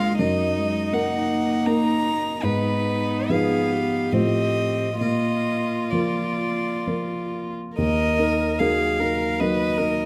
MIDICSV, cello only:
0, 0, Header, 1, 2, 480
1, 0, Start_track
1, 0, Key_signature, -6, "minor"
1, 0, Tempo, 745342
1, 126, Time_signature, 3, 2, 24, 8
1, 1565, Tempo, 860832
1, 3005, Tempo, 921659
1, 4445, Tempo, 800000
1, 5811, End_track
2, 0, Start_track
2, 0, Title_t, "Cello"
2, 0, Program_c, 0, 42
2, 0, Note_on_c, 0, 56, 65
2, 130, Note_on_c, 0, 54, 54
2, 140, Note_off_c, 0, 56, 0
2, 371, Note_on_c, 0, 56, 50
2, 380, Note_off_c, 0, 54, 0
2, 606, Note_on_c, 0, 58, 58
2, 615, Note_off_c, 0, 56, 0
2, 1568, Note_off_c, 0, 58, 0
2, 1571, Note_on_c, 0, 59, 61
2, 2515, Note_on_c, 0, 60, 43
2, 2523, Note_off_c, 0, 59, 0
2, 2999, Note_off_c, 0, 60, 0
2, 3002, Note_on_c, 0, 58, 47
2, 4314, Note_off_c, 0, 58, 0
2, 4937, Note_on_c, 0, 54, 59
2, 5300, Note_off_c, 0, 54, 0
2, 5420, Note_on_c, 0, 54, 52
2, 5767, Note_off_c, 0, 54, 0
2, 5811, End_track
0, 0, End_of_file